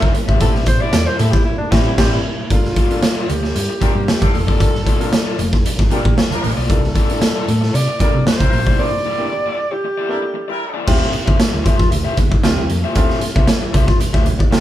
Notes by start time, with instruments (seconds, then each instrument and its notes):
Already playing: overdriven electric guitar E5
0.01 fingered electric bass D3, kick, high conga
0.13 muted overdriven electric guitar stroke, closed hi-hat
0.28 fingered electric bass G#1, overdriven electric guitar F4 G4 C5 E5, kick
0.40 fingered electric bass A1, upright piano G3 B3 C4 E4, overdriven electric guitar E4 G4 C5 E5, alto saxophone A4, kick, closed hi-hat, muted conga
0.55 snare
0.66 fingered electric bass A1, alto saxophone C5, muted overdriven electric guitar stroke, kick, closed hi-hat
0.80 overdriven electric guitar E4 G4 C5 E5, alto saxophone D5
0.93 fingered electric bass E2, muted overdriven electric guitar stroke, snare, closed hi-hat, high conga
1.06 alto saxophone C5, muted overdriven electric guitar stroke
1.18 fingered electric bass A2, overdriven electric guitar E4 G4 C5 E5, alto saxophone A4, closed hi-hat, muted conga
1.31 alto saxophone G4, muted overdriven electric guitar stroke, kick, snare
1.45 alto saxophone E4
1.58 alto saxophone D4
1.71 fingered electric bass A1, upright piano G3 C4 E4, alto saxophone E4, overdriven electric guitar E4 G4 C5 E5, kick, snare, crash
1.85 alto saxophone E4
1.98 fingered electric bass A1, upright piano G3 C4 E4, overdriven electric guitar E4 G4 C5 E5, alto saxophone G4, kick, snare, crash
2.12 alto saxophone E4
2.50 fingered electric bass G1, upright piano A#3 D4 F4 A4, alto saxophone F4, kick, closed hi-hat, muted conga
2.65 snare
2.76 overdriven electric guitar A#3 F4 A4 D5, kick, closed hi-hat, muted conga
2.91 upright piano A#3 D4 F4 A4, muted fingered electric bass stroke, closed hi-hat
3.03 muted overdriven electric guitar stroke, snare, closed hi-hat, high conga
3.17 overdriven electric guitar A#3 F4 A4 D5
3.29 fingered electric bass D2, alto saxophone G4, muted overdriven electric guitar stroke, closed hi-hat, muted conga
3.43 muted overdriven electric guitar stroke, snare
3.55 fingered electric bass G2, muted overdriven electric guitar stroke, closed hi-hat
3.69 muted overdriven electric guitar stroke
3.81 horn section F3 D4 A#4, overdriven electric guitar A#3 F4 A4 D5, upright piano A#3 D4 F4 G4, muted fingered electric bass stroke, kick, closed hi-hat, muted conga, low conga
3.95 fingered electric bass G2, muted overdriven electric guitar stroke
4.08 muted overdriven electric guitar stroke, snare, closed hi-hat, high conga
4.21 fingered electric bass G1, horn section F3 D4 A4, muted overdriven electric guitar stroke, kick, closed hi-hat, high conga
4.34 fingered electric bass F1, alto saxophone A4, open hi-hat, high conga
4.47 fingered electric bass F#1, overdriven electric guitar A#3 F4 A4 D5, kick
4.60 fingered electric bass G1, upright piano A#3 D4 F4 A4, kick, closed hi-hat, muted conga
4.75 snare
4.86 overdriven electric guitar A#3 F4 A4 D5, kick, closed hi-hat, muted conga
5.00 upright piano A#3 D4 F4 A4, muted fingered electric bass stroke, closed hi-hat
5.12 muted overdriven electric guitar stroke, snare, closed hi-hat, high conga
5.25 overdriven electric guitar A#3 F4 A4 D5
5.39 fingered electric bass F1, muted overdriven electric guitar stroke, closed hi-hat, muted conga
5.53 muted overdriven electric guitar stroke, kick, snare
5.65 muted overdriven electric guitar stroke, closed hi-hat, low conga
5.79 fingered electric bass G1, muted overdriven electric guitar stroke, kick, snare
5.90 horn section F3 D4 A4, overdriven electric guitar A#3 F4 A4 D5, upright piano A#3 D4 F4 G4, closed hi-hat, muted conga
6.05 fingered electric bass A1, muted overdriven electric guitar stroke, kick
6.17 muted overdriven electric guitar stroke, snare, closed hi-hat, high conga
6.31 horn section F3 D4 A#4, muted overdriven electric guitar stroke, closed hi-hat, high conga
6.44 fingered electric bass A1, open hi-hat, high conga
6.57 fingered electric bass B1, overdriven electric guitar A#3 F4 A4 D5
6.70 fingered electric bass C2, upright piano A#3 D4 E4 A4, alto saxophone A4, kick, closed hi-hat, muted conga
6.84 snare
6.95 overdriven electric guitar A#3 E4 A4 D5, kick, closed hi-hat, muted conga
7.10 upright piano A#3 D4 E4 A4, muted fingered electric bass stroke, closed hi-hat
7.21 muted overdriven electric guitar stroke, snare, closed hi-hat, high conga
7.36 overdriven electric guitar A#3 E4 A4 D5
7.48 fingered electric bass A2, muted overdriven electric guitar stroke, closed hi-hat, muted conga
7.61 muted overdriven electric guitar stroke, snare
7.74 fingered electric bass C3, alto saxophone D5, muted overdriven electric guitar stroke, closed hi-hat
7.88 muted overdriven electric guitar stroke
7.99 horn section G3 E4 A#4, upright piano A#3 D4 E4 A4, overdriven electric guitar A#3 E4 A4 D5, alto saxophone D5, muted fingered electric bass stroke, kick, closed hi-hat, muted conga, low conga
8.14 fingered electric bass C3, muted overdriven electric guitar stroke
8.27 alto saxophone C5, muted overdriven electric guitar stroke, snare, closed hi-hat, high conga
8.40 fingered electric bass C2, horn section G3 E4 A#4, muted overdriven electric guitar stroke, kick, closed hi-hat, high conga
8.52 fingered electric bass A#1, open hi-hat, high conga
8.67 fingered electric bass B1, overdriven electric guitar A#3 E4 A4 D5, kick
8.79 upright piano A#3 D4 E4 C5, alto saxophone D5
9.05 overdriven electric guitar A#3 E4 A4 D5
9.18 upright piano A#3 D4 E4 G4
9.32 muted overdriven electric guitar stroke
9.46 overdriven electric guitar A#3 E4 A4 D5
9.58 muted overdriven electric guitar stroke
9.71 alto saxophone G4, muted overdriven electric guitar stroke
9.84 muted overdriven electric guitar stroke
9.98 overdriven electric guitar A#3 E4 A4 D5
10.09 horn section G3 E4 A#4, upright piano A#3 D4 E4 A4, muted overdriven electric guitar stroke
10.22 muted overdriven electric guitar stroke
10.34 muted overdriven electric guitar stroke
10.48 horn section G3 E4 A#4, muted overdriven electric guitar stroke
10.74 overdriven electric guitar A#3 E4 A4 D5
10.86 fingered electric bass D2, upright piano C4 E4 F4 G4, overdriven electric guitar F4 G4 C5 E5, kick, crash, muted conga
11.02 snare
11.13 muted overdriven electric guitar stroke, muted fingered electric bass stroke, closed hi-hat
11.26 fingered electric bass D3, overdriven electric guitar F4 G4 C5 E5, kick
11.38 muted overdriven electric guitar stroke, snare, closed hi-hat, high conga
11.53 fingered electric bass D2, muted overdriven electric guitar stroke
11.64 overdriven electric guitar F4 G4 C5 E5, kick, closed hi-hat, muted conga
11.78 fingered electric bass F2, muted overdriven electric guitar stroke, kick, snare
11.90 fingered electric bass D2, muted overdriven electric guitar stroke, closed hi-hat
12.05 overdriven electric guitar F4 G4 C5 E5
12.17 fingered electric bass D3, muted overdriven electric guitar stroke, kick, closed hi-hat, muted conga, low conga
12.31 muted overdriven electric guitar stroke, kick
12.44 fingered electric bass D2, upright piano C4 E4 F4 G4, muted overdriven electric guitar stroke, snare, closed hi-hat, high conga
12.58 muted overdriven electric guitar stroke, high conga
12.70 fingered electric bass F2, closed hi-hat
12.84 overdriven electric guitar F4 G4 C5 E5
12.95 fingered electric bass D2, upright piano C4 E4 F4 A4, overdriven electric guitar F4 G4 C5 E5, kick, closed hi-hat, muted conga
13.10 snare
13.21 muted overdriven electric guitar stroke, closed hi-hat
13.36 fingered electric bass C2, overdriven electric guitar F4 G4 C5 E5, kick
13.47 muted overdriven electric guitar stroke, snare, closed hi-hat, high conga
13.62 muted overdriven electric guitar stroke, muted fingered electric bass stroke
13.73 fingered electric bass C2, overdriven electric guitar F4 G4 C5 E5, kick, closed hi-hat, muted conga
13.88 muted overdriven electric guitar stroke, kick, snare
14.00 muted overdriven electric guitar stroke, muted fingered electric bass stroke, closed hi-hat, low conga
14.14 fingered electric bass D2, overdriven electric guitar F4 G4 C5 E5, kick, snare
14.26 muted overdriven electric guitar stroke, closed hi-hat, muted conga, low conga
14.39 muted overdriven electric guitar stroke, kick
14.51 upright piano C4 E4 F4 A4, muted overdriven electric guitar stroke, snare, closed hi-hat, high conga